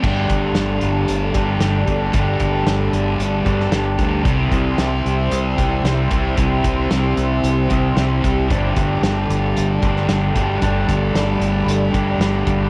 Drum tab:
CC |x---------------|----------------|----------------|----------------|
HH |--x-x-x-x-x-x-x-|x-x-x-x-x-x-x-x-|x-x-x-x-x-x-x-x-|x-x-x-x-x-x-x-x-|
SD |----o-------o---|----o------oo---|----o-------o---|----o-------o---|
BD |o-o-------o---o-|o-o-------o---o-|o-o-------o---o-|o-o-------o---o-|

CC |----------------|----------------|
HH |x-x-x-x-x-x-x-x-|x-x-x-x-x-x-x-x-|
SD |----o------oo---|----o-------o---|
BD |o-o-------o---o-|o-o-------o---o-|